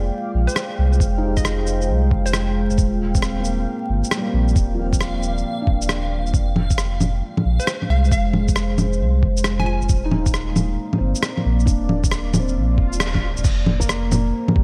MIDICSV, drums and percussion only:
0, 0, Header, 1, 2, 480
1, 0, Start_track
1, 0, Tempo, 444444
1, 1085, Time_signature, 4, 2, 24, 8
1, 15806, End_track
2, 0, Start_track
2, 0, Title_t, "Drums"
2, 523, Note_on_c, 9, 82, 56
2, 605, Note_off_c, 9, 82, 0
2, 605, Note_on_c, 9, 37, 98
2, 605, Note_on_c, 9, 82, 56
2, 713, Note_off_c, 9, 37, 0
2, 713, Note_off_c, 9, 82, 0
2, 1003, Note_on_c, 9, 82, 31
2, 1082, Note_on_c, 9, 36, 119
2, 1087, Note_off_c, 9, 82, 0
2, 1087, Note_on_c, 9, 82, 54
2, 1190, Note_off_c, 9, 36, 0
2, 1195, Note_off_c, 9, 82, 0
2, 1478, Note_on_c, 9, 82, 54
2, 1481, Note_on_c, 9, 36, 102
2, 1565, Note_off_c, 9, 82, 0
2, 1565, Note_on_c, 9, 37, 95
2, 1565, Note_on_c, 9, 82, 53
2, 1589, Note_off_c, 9, 36, 0
2, 1673, Note_off_c, 9, 37, 0
2, 1673, Note_off_c, 9, 82, 0
2, 1800, Note_on_c, 9, 82, 54
2, 1908, Note_off_c, 9, 82, 0
2, 1959, Note_on_c, 9, 82, 32
2, 2067, Note_off_c, 9, 82, 0
2, 2282, Note_on_c, 9, 36, 103
2, 2390, Note_off_c, 9, 36, 0
2, 2442, Note_on_c, 9, 82, 57
2, 2521, Note_off_c, 9, 82, 0
2, 2521, Note_on_c, 9, 37, 101
2, 2521, Note_on_c, 9, 82, 54
2, 2629, Note_off_c, 9, 37, 0
2, 2629, Note_off_c, 9, 82, 0
2, 2917, Note_on_c, 9, 82, 33
2, 3001, Note_off_c, 9, 82, 0
2, 3001, Note_on_c, 9, 82, 54
2, 3003, Note_on_c, 9, 36, 118
2, 3109, Note_off_c, 9, 82, 0
2, 3111, Note_off_c, 9, 36, 0
2, 3400, Note_on_c, 9, 82, 58
2, 3401, Note_on_c, 9, 36, 107
2, 3482, Note_off_c, 9, 82, 0
2, 3482, Note_on_c, 9, 37, 99
2, 3482, Note_on_c, 9, 82, 51
2, 3509, Note_off_c, 9, 36, 0
2, 3590, Note_off_c, 9, 37, 0
2, 3590, Note_off_c, 9, 82, 0
2, 3720, Note_on_c, 9, 82, 55
2, 3828, Note_off_c, 9, 82, 0
2, 4363, Note_on_c, 9, 82, 55
2, 4442, Note_off_c, 9, 82, 0
2, 4442, Note_on_c, 9, 37, 104
2, 4442, Note_on_c, 9, 82, 53
2, 4550, Note_off_c, 9, 37, 0
2, 4550, Note_off_c, 9, 82, 0
2, 4841, Note_on_c, 9, 82, 32
2, 4922, Note_off_c, 9, 82, 0
2, 4922, Note_on_c, 9, 82, 53
2, 4924, Note_on_c, 9, 36, 114
2, 5030, Note_off_c, 9, 82, 0
2, 5032, Note_off_c, 9, 36, 0
2, 5322, Note_on_c, 9, 36, 98
2, 5325, Note_on_c, 9, 82, 52
2, 5407, Note_off_c, 9, 82, 0
2, 5407, Note_on_c, 9, 37, 100
2, 5407, Note_on_c, 9, 82, 49
2, 5430, Note_off_c, 9, 36, 0
2, 5515, Note_off_c, 9, 37, 0
2, 5515, Note_off_c, 9, 82, 0
2, 5646, Note_on_c, 9, 82, 50
2, 5754, Note_off_c, 9, 82, 0
2, 5807, Note_on_c, 9, 82, 30
2, 5915, Note_off_c, 9, 82, 0
2, 6124, Note_on_c, 9, 36, 105
2, 6232, Note_off_c, 9, 36, 0
2, 6280, Note_on_c, 9, 82, 51
2, 6362, Note_off_c, 9, 82, 0
2, 6362, Note_on_c, 9, 37, 107
2, 6362, Note_on_c, 9, 82, 51
2, 6470, Note_off_c, 9, 37, 0
2, 6470, Note_off_c, 9, 82, 0
2, 6764, Note_on_c, 9, 82, 29
2, 6844, Note_on_c, 9, 36, 115
2, 6846, Note_off_c, 9, 82, 0
2, 6846, Note_on_c, 9, 82, 50
2, 6952, Note_off_c, 9, 36, 0
2, 6954, Note_off_c, 9, 82, 0
2, 7083, Note_on_c, 9, 61, 47
2, 7191, Note_off_c, 9, 61, 0
2, 7239, Note_on_c, 9, 82, 54
2, 7242, Note_on_c, 9, 36, 97
2, 7323, Note_off_c, 9, 82, 0
2, 7323, Note_on_c, 9, 37, 96
2, 7323, Note_on_c, 9, 82, 52
2, 7350, Note_off_c, 9, 36, 0
2, 7431, Note_off_c, 9, 37, 0
2, 7431, Note_off_c, 9, 82, 0
2, 7565, Note_on_c, 9, 61, 58
2, 7565, Note_on_c, 9, 82, 49
2, 7673, Note_off_c, 9, 61, 0
2, 7673, Note_off_c, 9, 82, 0
2, 7963, Note_on_c, 9, 61, 52
2, 8071, Note_off_c, 9, 61, 0
2, 8206, Note_on_c, 9, 82, 50
2, 8286, Note_off_c, 9, 82, 0
2, 8286, Note_on_c, 9, 37, 98
2, 8286, Note_on_c, 9, 82, 52
2, 8394, Note_off_c, 9, 37, 0
2, 8394, Note_off_c, 9, 82, 0
2, 8445, Note_on_c, 9, 61, 34
2, 8553, Note_off_c, 9, 61, 0
2, 8689, Note_on_c, 9, 82, 30
2, 8765, Note_off_c, 9, 82, 0
2, 8765, Note_on_c, 9, 36, 110
2, 8765, Note_on_c, 9, 82, 50
2, 8873, Note_off_c, 9, 36, 0
2, 8873, Note_off_c, 9, 82, 0
2, 9001, Note_on_c, 9, 61, 49
2, 9109, Note_off_c, 9, 61, 0
2, 9159, Note_on_c, 9, 82, 50
2, 9164, Note_on_c, 9, 36, 100
2, 9243, Note_off_c, 9, 82, 0
2, 9243, Note_on_c, 9, 37, 93
2, 9243, Note_on_c, 9, 82, 49
2, 9272, Note_off_c, 9, 36, 0
2, 9351, Note_off_c, 9, 37, 0
2, 9351, Note_off_c, 9, 82, 0
2, 9483, Note_on_c, 9, 61, 59
2, 9483, Note_on_c, 9, 82, 50
2, 9591, Note_off_c, 9, 61, 0
2, 9591, Note_off_c, 9, 82, 0
2, 9641, Note_on_c, 9, 82, 30
2, 9749, Note_off_c, 9, 82, 0
2, 9965, Note_on_c, 9, 36, 100
2, 10073, Note_off_c, 9, 36, 0
2, 10119, Note_on_c, 9, 82, 50
2, 10198, Note_off_c, 9, 82, 0
2, 10198, Note_on_c, 9, 37, 97
2, 10198, Note_on_c, 9, 82, 52
2, 10306, Note_off_c, 9, 37, 0
2, 10306, Note_off_c, 9, 82, 0
2, 10361, Note_on_c, 9, 61, 35
2, 10469, Note_off_c, 9, 61, 0
2, 10599, Note_on_c, 9, 82, 29
2, 10679, Note_off_c, 9, 82, 0
2, 10679, Note_on_c, 9, 82, 55
2, 10685, Note_on_c, 9, 36, 110
2, 10787, Note_off_c, 9, 82, 0
2, 10793, Note_off_c, 9, 36, 0
2, 10923, Note_on_c, 9, 61, 52
2, 11031, Note_off_c, 9, 61, 0
2, 11081, Note_on_c, 9, 82, 54
2, 11084, Note_on_c, 9, 36, 99
2, 11166, Note_off_c, 9, 82, 0
2, 11166, Note_on_c, 9, 37, 92
2, 11166, Note_on_c, 9, 82, 51
2, 11192, Note_off_c, 9, 36, 0
2, 11274, Note_off_c, 9, 37, 0
2, 11274, Note_off_c, 9, 82, 0
2, 11404, Note_on_c, 9, 61, 61
2, 11404, Note_on_c, 9, 82, 52
2, 11512, Note_off_c, 9, 61, 0
2, 11512, Note_off_c, 9, 82, 0
2, 11802, Note_on_c, 9, 61, 53
2, 11910, Note_off_c, 9, 61, 0
2, 12042, Note_on_c, 9, 82, 54
2, 12123, Note_off_c, 9, 82, 0
2, 12123, Note_on_c, 9, 37, 98
2, 12123, Note_on_c, 9, 82, 54
2, 12231, Note_off_c, 9, 37, 0
2, 12231, Note_off_c, 9, 82, 0
2, 12283, Note_on_c, 9, 61, 36
2, 12391, Note_off_c, 9, 61, 0
2, 12523, Note_on_c, 9, 82, 30
2, 12603, Note_on_c, 9, 36, 113
2, 12605, Note_off_c, 9, 82, 0
2, 12605, Note_on_c, 9, 82, 55
2, 12711, Note_off_c, 9, 36, 0
2, 12713, Note_off_c, 9, 82, 0
2, 12843, Note_on_c, 9, 61, 53
2, 12951, Note_off_c, 9, 61, 0
2, 13000, Note_on_c, 9, 36, 98
2, 13002, Note_on_c, 9, 82, 55
2, 13084, Note_off_c, 9, 82, 0
2, 13084, Note_on_c, 9, 37, 96
2, 13084, Note_on_c, 9, 82, 53
2, 13108, Note_off_c, 9, 36, 0
2, 13192, Note_off_c, 9, 37, 0
2, 13192, Note_off_c, 9, 82, 0
2, 13323, Note_on_c, 9, 61, 69
2, 13323, Note_on_c, 9, 82, 55
2, 13431, Note_off_c, 9, 61, 0
2, 13431, Note_off_c, 9, 82, 0
2, 13480, Note_on_c, 9, 82, 30
2, 13588, Note_off_c, 9, 82, 0
2, 13801, Note_on_c, 9, 36, 101
2, 13909, Note_off_c, 9, 36, 0
2, 13959, Note_on_c, 9, 82, 55
2, 14041, Note_off_c, 9, 82, 0
2, 14041, Note_on_c, 9, 37, 101
2, 14041, Note_on_c, 9, 82, 55
2, 14149, Note_off_c, 9, 37, 0
2, 14149, Note_off_c, 9, 82, 0
2, 14195, Note_on_c, 9, 61, 36
2, 14199, Note_on_c, 9, 36, 58
2, 14303, Note_off_c, 9, 61, 0
2, 14307, Note_off_c, 9, 36, 0
2, 14438, Note_on_c, 9, 82, 33
2, 14517, Note_off_c, 9, 82, 0
2, 14517, Note_on_c, 9, 49, 102
2, 14517, Note_on_c, 9, 82, 62
2, 14521, Note_on_c, 9, 36, 120
2, 14625, Note_off_c, 9, 49, 0
2, 14625, Note_off_c, 9, 82, 0
2, 14629, Note_off_c, 9, 36, 0
2, 14756, Note_on_c, 9, 61, 55
2, 14864, Note_off_c, 9, 61, 0
2, 14916, Note_on_c, 9, 82, 60
2, 14919, Note_on_c, 9, 36, 59
2, 15004, Note_off_c, 9, 82, 0
2, 15004, Note_on_c, 9, 37, 96
2, 15004, Note_on_c, 9, 82, 58
2, 15027, Note_off_c, 9, 36, 0
2, 15112, Note_off_c, 9, 37, 0
2, 15112, Note_off_c, 9, 82, 0
2, 15246, Note_on_c, 9, 61, 68
2, 15246, Note_on_c, 9, 82, 60
2, 15354, Note_off_c, 9, 61, 0
2, 15354, Note_off_c, 9, 82, 0
2, 15641, Note_on_c, 9, 61, 60
2, 15722, Note_on_c, 9, 36, 112
2, 15749, Note_off_c, 9, 61, 0
2, 15806, Note_off_c, 9, 36, 0
2, 15806, End_track
0, 0, End_of_file